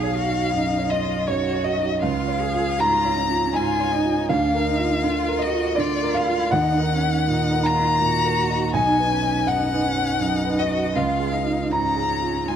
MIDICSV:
0, 0, Header, 1, 4, 480
1, 0, Start_track
1, 0, Tempo, 752823
1, 1295, Time_signature, 3, 2, 24, 8
1, 2262, Tempo, 740741
1, 7062, Tempo, 760456
1, 8074, End_track
2, 0, Start_track
2, 0, Title_t, "Violin"
2, 0, Program_c, 0, 40
2, 0, Note_on_c, 0, 77, 94
2, 574, Note_on_c, 0, 75, 86
2, 583, Note_off_c, 0, 77, 0
2, 810, Note_on_c, 0, 73, 79
2, 820, Note_off_c, 0, 75, 0
2, 1048, Note_on_c, 0, 75, 78
2, 1058, Note_off_c, 0, 73, 0
2, 1282, Note_off_c, 0, 75, 0
2, 1286, Note_on_c, 0, 77, 89
2, 1786, Note_on_c, 0, 82, 108
2, 1795, Note_off_c, 0, 77, 0
2, 2273, Note_on_c, 0, 80, 89
2, 2283, Note_off_c, 0, 82, 0
2, 2749, Note_off_c, 0, 80, 0
2, 2753, Note_on_c, 0, 77, 97
2, 3476, Note_on_c, 0, 75, 91
2, 3485, Note_off_c, 0, 77, 0
2, 3720, Note_on_c, 0, 74, 93
2, 3729, Note_off_c, 0, 75, 0
2, 3960, Note_on_c, 0, 77, 92
2, 3969, Note_off_c, 0, 74, 0
2, 4197, Note_off_c, 0, 77, 0
2, 4200, Note_on_c, 0, 78, 108
2, 4923, Note_on_c, 0, 82, 115
2, 4932, Note_off_c, 0, 78, 0
2, 5625, Note_off_c, 0, 82, 0
2, 5629, Note_on_c, 0, 80, 108
2, 6105, Note_on_c, 0, 78, 109
2, 6114, Note_off_c, 0, 80, 0
2, 6827, Note_on_c, 0, 75, 86
2, 6836, Note_off_c, 0, 78, 0
2, 7064, Note_on_c, 0, 77, 82
2, 7074, Note_off_c, 0, 75, 0
2, 7539, Note_on_c, 0, 82, 89
2, 7549, Note_off_c, 0, 77, 0
2, 8027, Note_on_c, 0, 80, 76
2, 8037, Note_off_c, 0, 82, 0
2, 8074, Note_off_c, 0, 80, 0
2, 8074, End_track
3, 0, Start_track
3, 0, Title_t, "Grand piano"
3, 0, Program_c, 1, 0
3, 0, Control_c, 1, 64, 127
3, 0, Note_on_c, 1, 35, 71
3, 0, Note_on_c, 1, 77, 102
3, 21, Note_on_c, 1, 73, 56
3, 180, Note_on_c, 1, 63, 51
3, 275, Note_off_c, 1, 73, 0
3, 340, Note_on_c, 1, 42, 57
3, 434, Note_off_c, 1, 63, 0
3, 500, Note_on_c, 1, 73, 62
3, 553, Note_off_c, 1, 77, 0
3, 582, Note_on_c, 1, 75, 90
3, 593, Note_off_c, 1, 42, 0
3, 659, Note_on_c, 1, 63, 54
3, 753, Note_off_c, 1, 73, 0
3, 802, Note_off_c, 1, 75, 0
3, 815, Note_on_c, 1, 73, 94
3, 818, Note_on_c, 1, 42, 61
3, 913, Note_off_c, 1, 63, 0
3, 966, Note_off_c, 1, 73, 0
3, 975, Note_on_c, 1, 73, 60
3, 1047, Note_on_c, 1, 75, 100
3, 1072, Note_off_c, 1, 42, 0
3, 1131, Note_on_c, 1, 63, 55
3, 1231, Note_off_c, 1, 73, 0
3, 1270, Note_off_c, 1, 35, 0
3, 1273, Note_off_c, 1, 75, 0
3, 1288, Note_on_c, 1, 77, 107
3, 1290, Note_on_c, 1, 37, 79
3, 1293, Note_off_c, 1, 63, 0
3, 1307, Control_c, 1, 64, 0
3, 1413, Control_c, 1, 64, 127
3, 1453, Note_on_c, 1, 73, 63
3, 1620, Note_on_c, 1, 65, 58
3, 1716, Note_off_c, 1, 73, 0
3, 1754, Note_off_c, 1, 77, 0
3, 1785, Note_on_c, 1, 44, 59
3, 1788, Note_on_c, 1, 82, 115
3, 1880, Note_off_c, 1, 65, 0
3, 1944, Note_on_c, 1, 73, 67
3, 2041, Note_off_c, 1, 44, 0
3, 2104, Note_on_c, 1, 65, 61
3, 2199, Note_off_c, 1, 73, 0
3, 2239, Note_off_c, 1, 82, 0
3, 2251, Note_on_c, 1, 80, 92
3, 2265, Note_on_c, 1, 44, 67
3, 2358, Note_off_c, 1, 65, 0
3, 2427, Note_on_c, 1, 73, 73
3, 2520, Note_off_c, 1, 44, 0
3, 2588, Note_on_c, 1, 65, 66
3, 2682, Note_off_c, 1, 73, 0
3, 2712, Note_off_c, 1, 80, 0
3, 2716, Note_off_c, 1, 37, 0
3, 2745, Note_on_c, 1, 77, 113
3, 2746, Note_off_c, 1, 65, 0
3, 2746, Note_on_c, 1, 38, 80
3, 2756, Control_c, 1, 64, 0
3, 2866, Control_c, 1, 64, 127
3, 2910, Note_on_c, 1, 70, 68
3, 3067, Note_on_c, 1, 65, 64
3, 3164, Note_off_c, 1, 70, 0
3, 3227, Note_on_c, 1, 50, 62
3, 3323, Note_off_c, 1, 65, 0
3, 3386, Note_on_c, 1, 70, 73
3, 3441, Note_off_c, 1, 77, 0
3, 3455, Note_on_c, 1, 75, 102
3, 3483, Note_off_c, 1, 50, 0
3, 3549, Note_on_c, 1, 65, 65
3, 3643, Note_off_c, 1, 70, 0
3, 3684, Note_off_c, 1, 75, 0
3, 3690, Note_on_c, 1, 74, 101
3, 3707, Note_on_c, 1, 50, 74
3, 3805, Note_off_c, 1, 65, 0
3, 3869, Note_on_c, 1, 70, 71
3, 3923, Note_off_c, 1, 74, 0
3, 3944, Note_on_c, 1, 77, 114
3, 3965, Note_off_c, 1, 50, 0
3, 4026, Note_on_c, 1, 65, 67
3, 4127, Note_off_c, 1, 70, 0
3, 4167, Note_off_c, 1, 38, 0
3, 4172, Note_off_c, 1, 77, 0
3, 4182, Note_on_c, 1, 78, 124
3, 4190, Note_off_c, 1, 65, 0
3, 4190, Note_on_c, 1, 39, 83
3, 4203, Control_c, 1, 64, 0
3, 4311, Control_c, 1, 64, 127
3, 4355, Note_on_c, 1, 70, 66
3, 4517, Note_on_c, 1, 63, 65
3, 4611, Note_off_c, 1, 70, 0
3, 4676, Note_on_c, 1, 46, 68
3, 4771, Note_off_c, 1, 63, 0
3, 4832, Note_on_c, 1, 70, 70
3, 4883, Note_off_c, 1, 78, 0
3, 4909, Note_on_c, 1, 82, 110
3, 4930, Note_off_c, 1, 46, 0
3, 4995, Note_on_c, 1, 63, 65
3, 5088, Note_off_c, 1, 70, 0
3, 5153, Note_on_c, 1, 46, 65
3, 5249, Note_off_c, 1, 63, 0
3, 5311, Note_on_c, 1, 70, 72
3, 5406, Note_off_c, 1, 46, 0
3, 5472, Note_on_c, 1, 63, 67
3, 5564, Note_off_c, 1, 70, 0
3, 5599, Note_off_c, 1, 82, 0
3, 5600, Note_off_c, 1, 39, 0
3, 5623, Note_on_c, 1, 35, 84
3, 5626, Note_on_c, 1, 80, 118
3, 5628, Note_off_c, 1, 63, 0
3, 5638, Control_c, 1, 64, 0
3, 5736, Control_c, 1, 64, 127
3, 5783, Note_on_c, 1, 71, 68
3, 5938, Note_on_c, 1, 63, 61
3, 6038, Note_off_c, 1, 71, 0
3, 6077, Note_off_c, 1, 80, 0
3, 6098, Note_on_c, 1, 42, 59
3, 6099, Note_on_c, 1, 78, 108
3, 6196, Note_off_c, 1, 63, 0
3, 6261, Note_on_c, 1, 71, 64
3, 6356, Note_off_c, 1, 42, 0
3, 6416, Note_on_c, 1, 63, 58
3, 6517, Note_off_c, 1, 71, 0
3, 6573, Note_on_c, 1, 42, 70
3, 6674, Note_off_c, 1, 63, 0
3, 6730, Note_on_c, 1, 71, 66
3, 6793, Note_off_c, 1, 78, 0
3, 6828, Note_on_c, 1, 75, 102
3, 6832, Note_off_c, 1, 42, 0
3, 6891, Note_on_c, 1, 63, 58
3, 6991, Note_off_c, 1, 71, 0
3, 7033, Note_off_c, 1, 35, 0
3, 7048, Note_off_c, 1, 75, 0
3, 7056, Note_off_c, 1, 63, 0
3, 7060, Note_on_c, 1, 37, 77
3, 7068, Note_on_c, 1, 77, 107
3, 7072, Control_c, 1, 64, 0
3, 7192, Control_c, 1, 64, 127
3, 7213, Note_on_c, 1, 68, 56
3, 7373, Note_on_c, 1, 65, 50
3, 7474, Note_off_c, 1, 68, 0
3, 7520, Note_off_c, 1, 77, 0
3, 7532, Note_on_c, 1, 44, 49
3, 7548, Note_on_c, 1, 82, 96
3, 7633, Note_off_c, 1, 65, 0
3, 7695, Note_on_c, 1, 68, 58
3, 7792, Note_off_c, 1, 44, 0
3, 7859, Note_on_c, 1, 65, 53
3, 7953, Note_off_c, 1, 68, 0
3, 7999, Note_off_c, 1, 82, 0
3, 8020, Note_on_c, 1, 44, 58
3, 8035, Note_on_c, 1, 80, 72
3, 8074, Note_off_c, 1, 37, 0
3, 8074, Note_off_c, 1, 44, 0
3, 8074, Note_off_c, 1, 65, 0
3, 8074, Note_off_c, 1, 80, 0
3, 8074, End_track
4, 0, Start_track
4, 0, Title_t, "Cello"
4, 0, Program_c, 2, 42
4, 0, Note_on_c, 2, 68, 80
4, 96, Note_on_c, 2, 66, 79
4, 106, Note_off_c, 2, 68, 0
4, 332, Note_on_c, 2, 63, 73
4, 341, Note_off_c, 2, 66, 0
4, 570, Note_on_c, 2, 65, 75
4, 579, Note_off_c, 2, 63, 0
4, 811, Note_on_c, 2, 66, 85
4, 820, Note_off_c, 2, 65, 0
4, 1286, Note_off_c, 2, 66, 0
4, 1290, Note_on_c, 2, 65, 75
4, 1535, Note_on_c, 2, 68, 81
4, 1544, Note_off_c, 2, 65, 0
4, 1783, Note_on_c, 2, 65, 86
4, 1792, Note_off_c, 2, 68, 0
4, 2027, Note_on_c, 2, 61, 78
4, 2036, Note_off_c, 2, 65, 0
4, 2261, Note_on_c, 2, 65, 90
4, 2271, Note_off_c, 2, 61, 0
4, 2503, Note_on_c, 2, 63, 89
4, 2513, Note_off_c, 2, 65, 0
4, 2747, Note_on_c, 2, 62, 84
4, 2757, Note_off_c, 2, 63, 0
4, 2981, Note_off_c, 2, 62, 0
4, 2985, Note_on_c, 2, 63, 82
4, 3229, Note_on_c, 2, 65, 91
4, 3239, Note_off_c, 2, 63, 0
4, 3469, Note_on_c, 2, 66, 98
4, 3478, Note_off_c, 2, 65, 0
4, 3703, Note_off_c, 2, 66, 0
4, 3707, Note_on_c, 2, 65, 94
4, 4189, Note_on_c, 2, 63, 92
4, 4199, Note_off_c, 2, 65, 0
4, 4432, Note_on_c, 2, 61, 83
4, 4442, Note_off_c, 2, 63, 0
4, 4673, Note_off_c, 2, 61, 0
4, 4679, Note_on_c, 2, 63, 83
4, 4916, Note_on_c, 2, 65, 82
4, 4926, Note_off_c, 2, 63, 0
4, 5154, Note_off_c, 2, 65, 0
4, 5161, Note_on_c, 2, 66, 100
4, 5624, Note_on_c, 2, 63, 84
4, 5633, Note_off_c, 2, 66, 0
4, 5863, Note_off_c, 2, 63, 0
4, 5868, Note_on_c, 2, 61, 79
4, 6104, Note_on_c, 2, 63, 80
4, 6113, Note_off_c, 2, 61, 0
4, 6345, Note_on_c, 2, 61, 78
4, 6354, Note_off_c, 2, 63, 0
4, 6582, Note_on_c, 2, 63, 81
4, 6592, Note_off_c, 2, 61, 0
4, 6815, Note_on_c, 2, 66, 87
4, 6825, Note_off_c, 2, 63, 0
4, 7057, Note_off_c, 2, 66, 0
4, 7061, Note_on_c, 2, 65, 79
4, 7298, Note_on_c, 2, 63, 72
4, 7307, Note_off_c, 2, 65, 0
4, 7540, Note_on_c, 2, 61, 73
4, 7549, Note_off_c, 2, 63, 0
4, 8025, Note_on_c, 2, 65, 76
4, 8034, Note_off_c, 2, 61, 0
4, 8074, Note_off_c, 2, 65, 0
4, 8074, End_track
0, 0, End_of_file